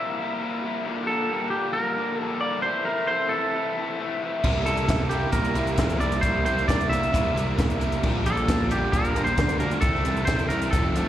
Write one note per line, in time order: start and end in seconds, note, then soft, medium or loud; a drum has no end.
0.00 0.19 C3 medium
0.00 0.19 G3 loud
0.00 0.20 A#3 loud
0.00 0.83 A#3 medium
0.00 0.20 E4 loud
0.00 0.59 E5 medium
0.00 0.83 E5 medium
0.00 0.83 C6 medium
0.20 0.40 C3 medium
0.20 0.40 G3 medium
0.20 0.40 A#3 medium
0.20 0.41 E4 medium
0.41 0.62 C3 medium
0.41 0.62 G3 medium
0.41 0.63 A#3 medium
0.41 0.63 E4 loud
0.63 0.84 C3 medium
0.63 0.85 G3 medium
0.63 0.85 A#3 medium
0.63 0.85 E4 medium
0.85 1.06 A#2 loud
0.85 1.07 D3 loud
0.85 1.07 G3 loud
0.85 2.64 A#3 medium
0.85 1.08 A#3 loud
0.85 1.08 D4 loud
0.85 2.63 G4 medium
0.85 2.63 F5 medium
0.85 2.63 G5 medium
1.07 1.29 A#2 medium
1.07 1.29 D3 medium
1.07 1.29 G3 medium
1.07 1.30 A#3 medium
1.07 1.30 D4 medium
1.07 1.50 A4 medium
1.30 1.50 A#2 medium
1.30 1.51 D3 medium
1.30 1.51 G3 loud
1.30 1.51 A#3 loud
1.30 1.52 D4 loud
1.50 1.72 A#2 medium
1.50 1.73 D3 medium
1.50 1.73 G3 medium
1.50 1.73 A#3 medium
1.50 1.74 D4 loud
1.50 1.73 G4 medium
1.73 1.96 A#2 loud
1.73 1.96 D3 loud
1.73 1.96 G3 loud
1.73 1.97 A#3 loud
1.73 1.98 D4 loud
1.73 2.18 A#4 loud
1.97 2.19 A#2 medium
1.97 2.20 D3 medium
1.97 2.20 G3 medium
1.97 2.20 A#3 medium
1.97 2.21 D4 medium
2.18 2.41 A#2 medium
2.18 2.42 D3 medium
2.18 2.42 G3 medium
2.18 2.43 A#3 medium
2.18 2.43 D4 loud
2.18 2.37 A4 loud
2.41 2.63 A#2 medium
2.41 2.64 D3 medium
2.41 2.64 G3 medium
2.41 2.64 A#3 medium
2.41 2.64 D4 medium
2.41 2.62 D5 medium
2.62 2.86 C3 loud
2.62 2.86 E3 medium
2.62 2.86 A3 loud
2.62 4.41 C4 medium
2.62 4.41 A4 medium
2.62 2.87 C5 loud
2.62 7.98 E5 medium
2.62 7.98 C6 medium
2.66 2.88 E4 loud
2.85 3.10 C3 medium
2.85 3.10 E3 medium
2.85 3.09 A3 medium
2.85 3.11 E4 medium
2.85 3.09 A#4 medium
3.07 3.32 C3 medium
3.07 3.33 E3 medium
3.07 3.32 A3 loud
3.07 3.33 E4 medium
3.07 3.32 C5 loud
3.29 3.54 C3 medium
3.29 4.16 A4 medium
3.34 3.55 E3 medium
3.34 3.54 A3 medium
3.34 3.56 E4 medium
3.55 3.77 C3 loud
3.55 3.77 E3 loud
3.55 3.77 A3 medium
3.55 3.78 E4 loud
3.77 3.98 C3 medium
3.77 3.99 E3 medium
3.77 3.99 A3 medium
3.77 4.00 E4 medium
3.99 4.22 C3 medium
3.99 4.22 E3 medium
3.99 4.22 A3 medium
3.99 4.23 E4 medium
4.22 4.44 C3 medium
4.22 4.44 E3 medium
4.22 4.43 A3 medium
4.22 4.45 E4 medium
4.44 4.62 C2 medium
4.44 4.66 C3 loud
4.44 4.66 G3 medium
4.44 7.99 A#3 medium
4.44 4.67 A#3 medium
4.44 4.67 E4 loud
4.44 kick loud
4.44 crash medium
4.66 4.84 C2 loud
4.66 4.87 C3 medium
4.66 4.88 G3 medium
4.66 4.89 A#3 medium
4.66 4.89 E4 medium
4.66 5.09 A4 medium
4.66 closed hi-hat medium
4.77 closed hi-hat soft
4.88 5.24 C2 medium
4.88 5.10 C3 medium
4.88 5.11 G3 medium
4.88 5.11 A#3 loud
4.88 5.11 E4 medium
4.88 kick loud
4.88 snare loud
4.88 closed hi-hat loud
5.09 5.32 C3 medium
5.09 5.34 G3 medium
5.09 5.34 A#3 medium
5.09 5.33 E4 medium
5.09 5.31 G4 medium
5.09 closed hi-hat medium
5.33 5.51 C2 medium
5.33 5.54 C3 loud
5.33 5.55 G3 loud
5.33 5.56 A#3 loud
5.33 5.56 E4 loud
5.33 6.02 A#4 medium
5.33 kick loud
5.33 closed hi-hat loud
5.45 closed hi-hat soft
5.55 5.73 C2 loud
5.55 5.77 C3 medium
5.55 5.79 G3 medium
5.55 5.80 A#3 medium
5.55 5.79 E4 medium
5.55 closed hi-hat medium
5.67 closed hi-hat soft
5.75 5.96 F2 medium
5.75 6.00 C3 loud
5.75 5.99 G3 medium
5.75 6.00 A#3 loud
5.75 kick loud
5.75 snare loud
5.75 closed hi-hat loud
5.79 6.01 G3 medium
5.79 6.02 A#3 medium
5.79 6.02 E4 loud
5.90 closed hi-hat soft
5.99 6.17 C2 medium
5.99 6.23 C3 medium
5.99 6.25 G3 medium
5.99 6.25 A#3 medium
5.99 6.21 D5 medium
5.99 closed hi-hat medium
6.03 6.24 E4 loud
6.12 closed hi-hat soft
6.21 6.41 C2 loud
6.21 6.45 C3 loud
6.21 6.46 G3 loud
6.21 6.43 C5 medium
6.21 kick loud
6.21 closed hi-hat loud
6.25 6.47 A#3 loud
6.25 6.46 E4 loud
6.44 6.62 C2 medium
6.44 6.68 C3 medium
6.44 6.69 G3 medium
6.44 6.69 A#3 medium
6.44 6.69 E4 medium
6.44 6.67 C5 loud
6.44 closed hi-hat medium
6.58 closed hi-hat soft
6.68 6.86 C2 medium
6.68 6.91 C3 medium
6.68 6.92 G3 medium
6.68 6.92 A#3 loud
6.68 6.92 E4 medium
6.68 6.89 D5 loud
6.68 kick loud
6.68 snare loud
6.68 closed hi-hat loud
6.81 closed hi-hat soft
6.89 7.08 C2 loud
6.89 7.13 C3 medium
6.89 7.14 G3 medium
6.89 7.13 A#3 medium
6.89 7.14 E4 medium
6.89 7.76 E5 loud
6.89 closed hi-hat medium
7.03 closed hi-hat soft
7.14 7.32 C2 loud
7.14 7.35 C3 loud
7.14 7.36 G3 loud
7.14 7.36 A#3 medium
7.14 7.37 E4 medium
7.14 kick loud
7.14 closed hi-hat loud
7.35 7.53 C2 loud
7.35 7.58 C3 medium
7.35 7.59 G3 medium
7.35 7.59 A#3 medium
7.35 7.59 E4 medium
7.35 closed hi-hat medium
7.58 7.94 C2 medium
7.58 7.81 C3 medium
7.58 7.81 G3 medium
7.58 7.81 A#3 medium
7.58 7.82 E4 medium
7.58 kick loud
7.58 snare loud
7.58 closed hi-hat loud
7.70 closed hi-hat soft
7.81 8.02 C3 medium
7.81 8.02 G3 medium
7.81 8.02 A#3 loud
7.81 8.03 E4 medium
7.81 closed hi-hat medium
7.92 closed hi-hat medium
8.03 8.21 A#1 loud
8.03 8.26 A#2 loud
8.03 8.26 D3 loud
8.03 8.27 G3 loud
8.03 8.27 A#3 loud
8.03 8.28 D4 loud
8.03 9.81 G4 medium
8.03 9.81 F5 medium
8.03 9.81 G5 medium
8.03 kick loud
8.03 crash loud
8.26 8.43 A#1 medium
8.26 8.47 A#2 medium
8.26 8.48 D3 medium
8.26 8.48 G3 medium
8.26 8.48 A#3 medium
8.26 8.48 D4 medium
8.26 8.72 A4 loud
8.26 closed hi-hat medium
8.37 closed hi-hat soft
8.48 8.84 A#1 medium
8.48 8.70 A#2 medium
8.48 8.71 D3 medium
8.48 8.71 G3 medium
8.48 8.71 A#3 loud
8.48 8.72 D4 loud
8.48 kick loud
8.48 snare loud
8.48 closed hi-hat loud
8.71 8.92 A#2 medium
8.71 8.93 D3 medium
8.71 8.94 G3 medium
8.71 8.94 A#3 medium
8.71 8.94 D4 medium
8.71 8.94 G4 medium
8.71 closed hi-hat medium
8.92 9.11 A#1 medium
8.92 9.15 A#2 medium
8.92 9.16 D3 medium
8.92 9.16 G3 loud
8.92 9.17 A#3 loud
8.92 9.16 D4 loud
8.92 9.24 A#4 loud
8.92 kick loud
8.92 closed hi-hat loud
9.05 closed hi-hat soft
9.16 9.33 A#1 loud
9.16 9.37 A#2 medium
9.16 9.38 D3 medium
9.16 9.38 G3 medium
9.16 9.39 A#3 medium
9.16 9.39 D4 medium
9.16 closed hi-hat medium
9.24 9.59 C5 loud
9.24 closed hi-hat soft
9.38 9.56 D2 medium
9.38 9.59 A#2 medium
9.38 9.59 D3 loud
9.38 9.60 G3 medium
9.38 9.60 A#3 loud
9.38 9.61 D4 medium
9.38 kick loud
9.38 snare loud
9.38 closed hi-hat loud
9.49 closed hi-hat medium
9.60 9.78 D2 medium
9.60 9.81 A#2 medium
9.60 9.81 D3 medium
9.60 9.82 G3 medium
9.60 9.82 A#3 medium
9.60 9.82 D4 loud
9.60 9.80 A#4 medium
9.60 closed hi-hat medium
9.71 closed hi-hat soft
9.81 10.00 C2 medium
9.81 10.05 C3 loud
9.81 10.05 E3 loud
9.81 10.06 A3 loud
9.81 10.06 C4 loud
9.81 10.25 A4 loud
9.81 11.08 A4 medium
9.81 10.72 E5 medium
9.81 10.73 C6 medium
9.81 kick loud
9.81 closed hi-hat loud
9.95 snare soft
10.04 10.23 C2 medium
10.04 10.26 C3 medium
10.04 10.27 E3 medium
10.04 10.28 A3 medium
10.04 10.28 C4 medium
10.04 closed hi-hat medium
10.17 closed hi-hat soft
10.25 10.46 C2 medium
10.25 10.49 C3 loud
10.25 10.49 E3 loud
10.25 10.50 A3 loud
10.25 10.48 C5 loud
10.25 kick loud
10.25 snare loud
10.25 closed hi-hat loud
10.29 10.51 C4 medium
10.39 closed hi-hat soft
10.49 10.68 C2 loud
10.49 10.71 C3 medium
10.49 10.72 E3 medium
10.49 10.72 A3 medium
10.49 10.72 C4 loud
10.49 10.70 A#4 medium
10.49 closed hi-hat medium
10.62 closed hi-hat medium
10.71 10.91 F1 medium
10.71 10.95 F2 medium
10.71 10.96 C3 medium
10.71 10.96 F3 loud
10.71 10.96 A3 loud
10.71 11.08 A4 medium
10.71 11.08 F5 medium
10.71 11.08 E6 medium
10.71 kick loud
10.71 closed hi-hat loud
10.75 10.97 C4 loud
10.95 11.08 F1 loud
10.95 11.08 F2 medium
10.95 11.08 C3 medium
10.95 11.08 F3 medium
10.95 11.08 A3 medium
10.95 11.08 C4 medium
10.95 closed hi-hat medium